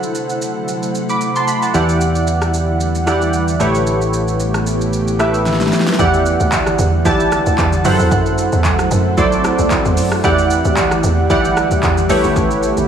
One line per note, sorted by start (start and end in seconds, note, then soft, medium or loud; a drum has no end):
0.00 1.72 C3 medium
0.00 0.21 F#3 medium
0.00 1.72 A3 medium
0.00 0.21 E4 medium
0.00 3.56 E4 medium
0.00 0.21 A4 medium
0.00 0.21 C5 medium
0.00 0.21 F#5 medium
0.00 3.56 F#5 medium
0.00 shaker medium
0.15 shaker medium
0.30 shaker medium
0.42 shaker medium
0.68 shaker medium
0.83 shaker medium
0.95 shaker medium
1.09 1.35 B5 medium
1.09 1.35 D6 medium
1.09 shaker medium
1.21 shaker medium
1.36 1.48 A5 medium
1.36 1.47 C6 medium
1.36 shaker medium
1.48 1.62 B5 medium
1.48 shaker medium
1.62 1.74 F#5 soft
1.62 1.88 A5 medium
1.62 shaker soft
1.74 3.56 E2 medium
1.74 3.58 D3 medium
1.74 2.60 E3 medium
1.74 3.58 G3 medium
1.74 2.60 E4 medium
1.74 2.60 G4 medium
1.74 2.60 D5 medium
1.74 2.60 F#5 medium
1.74 shaker medium
1.89 shaker soft
2.01 shaker medium
2.15 shaker medium
2.27 shaker medium
2.42 cross-stick medium
2.42 shaker medium
2.54 shaker medium
2.80 shaker medium
2.95 shaker medium
3.06 3.60 E3 medium
3.06 3.59 E4 medium
3.06 3.59 G4 medium
3.06 3.60 D5 medium
3.06 3.60 F#5 medium
3.06 cross-stick medium
3.06 shaker medium
3.21 shaker medium
3.33 shaker medium
3.48 shaker medium
3.60 5.69 A1 medium
3.60 5.97 C#3 medium
3.60 4.45 A3 medium
3.60 5.97 A3 medium
3.60 5.97 B3 medium
3.60 4.46 E4 medium
3.60 5.97 G4 medium
3.60 4.46 G4 medium
3.60 4.46 B4 medium
3.60 4.46 C#5 loud
3.60 shaker medium
3.75 shaker soft
3.87 shaker medium
4.01 shaker soft
4.13 shaker medium
4.28 shaker medium
4.40 shaker medium
4.54 cross-stick medium
4.54 shaker medium
4.67 shaker medium
4.81 shaker medium
4.93 shaker medium
5.08 shaker medium
5.19 5.84 A3 medium
5.19 5.84 E4 medium
5.19 5.84 G4 medium
5.19 5.84 B4 medium
5.19 5.85 E5 medium
5.19 cross-stick loud
5.19 shaker medium
5.34 shaker medium
5.46 snare medium
5.46 shaker medium
5.53 snare soft
5.61 snare medium
5.61 shaker medium
5.67 snare medium
5.73 snare medium
5.73 shaker medium
5.80 snare medium
5.87 snare medium
5.87 shaker soft
5.93 snare medium
5.99 6.36 E2 loud
5.99 7.83 D3 medium
5.99 6.84 E3 medium
5.99 7.83 G3 medium
5.99 6.84 E4 medium
5.99 12.06 E4 medium
5.99 6.85 G4 medium
5.99 6.85 D5 medium
5.99 7.83 F#5 medium
5.99 6.85 F#5 loud
5.99 kick loud
5.99 shaker medium
6.14 shaker medium
6.26 shaker loud
6.40 6.75 D2 medium
6.40 shaker medium
6.52 kick loud
6.52 clap loud
6.52 shaker medium
6.67 cross-stick medium
6.67 shaker medium
6.79 7.03 E2 loud
6.79 shaker loud
7.05 7.42 B1 medium
7.05 7.85 E3 medium
7.05 7.84 E4 medium
7.05 7.84 G4 medium
7.05 7.85 D5 medium
7.05 7.85 A5 loud
7.05 kick loud
7.05 shaker medium
7.20 shaker medium
7.32 cross-stick loud
7.32 shaker medium
7.46 7.57 D2 medium
7.46 shaker medium
7.58 7.82 E2 loud
7.58 kick loud
7.58 clap medium
7.58 shaker medium
7.73 shaker medium
7.84 7.98 F#2 medium
7.84 8.70 F#3 loud
7.84 10.22 A3 medium
7.84 10.22 C4 medium
7.84 8.70 E4 medium
7.84 7.92 G4 medium
7.84 8.71 C5 medium
7.84 12.06 F#5 medium
7.84 8.71 F#5 loud
7.84 open hi-hat medium
7.84 shaker medium
7.91 8.74 A4 medium
7.99 8.10 E2 loud
7.99 shaker medium
8.11 8.49 F#2 loud
8.11 kick loud
8.11 shaker medium
8.26 shaker medium
8.38 shaker loud
8.52 8.87 E2 loud
8.52 shaker medium
8.64 kick loud
8.64 clap loud
8.64 shaker medium
8.79 cross-stick loud
8.79 shaker medium
8.91 9.15 F#2 loud
8.91 shaker loud
9.17 9.55 B1 loud
9.17 10.03 F#3 medium
9.17 10.03 E4 medium
9.17 10.03 A4 medium
9.17 10.03 C5 medium
9.17 10.04 D5 loud
9.17 kick loud
9.17 shaker medium
9.32 shaker medium
9.44 cross-stick loud
9.44 shaker medium
9.59 9.70 C2 medium
9.59 shaker medium
9.70 kick loud
9.70 clap medium
9.70 shaker medium
9.85 9.99 E2 loud
9.85 shaker medium
9.97 10.21 F#2 medium
9.97 open hi-hat medium
9.97 shaker medium
10.12 cross-stick loud
10.12 shaker medium
10.24 10.61 E2 loud
10.24 12.08 D3 medium
10.24 11.09 E3 medium
10.24 12.08 G3 medium
10.24 11.09 E4 medium
10.24 11.09 G4 medium
10.24 11.10 D5 medium
10.24 11.10 F#5 loud
10.24 kick loud
10.24 shaker medium
10.38 shaker medium
10.50 shaker medium
10.65 11.00 D2 loud
10.65 shaker medium
10.77 kick loud
10.77 clap loud
10.77 shaker medium
10.91 cross-stick loud
10.91 shaker medium
11.04 11.27 E2 loud
11.04 shaker loud
11.30 11.67 B1 medium
11.30 12.10 E3 medium
11.30 12.08 E4 medium
11.30 12.09 G4 medium
11.30 12.10 D5 medium
11.30 12.10 F#5 loud
11.30 kick loud
11.30 shaker medium
11.45 shaker medium
11.57 cross-stick loud
11.57 shaker medium
11.71 11.82 D2 medium
11.71 shaker medium
11.83 12.07 E2 loud
11.83 kick medium
11.83 clap medium
11.83 shaker medium
11.98 shaker medium
12.09 12.23 A1 loud
12.09 12.88 C#3 medium
12.09 12.88 A3 medium
12.09 12.88 B3 medium
12.09 12.88 E4 medium
12.09 12.88 G4 medium
12.09 12.88 B4 medium
12.09 12.88 C#5 loud
12.09 open hi-hat medium
12.09 shaker medium
12.24 12.35 G1 medium
12.24 shaker medium
12.36 12.73 A1 loud
12.36 kick loud
12.36 shaker medium
12.51 shaker medium
12.63 shaker medium
12.77 12.88 G1 medium
12.77 shaker medium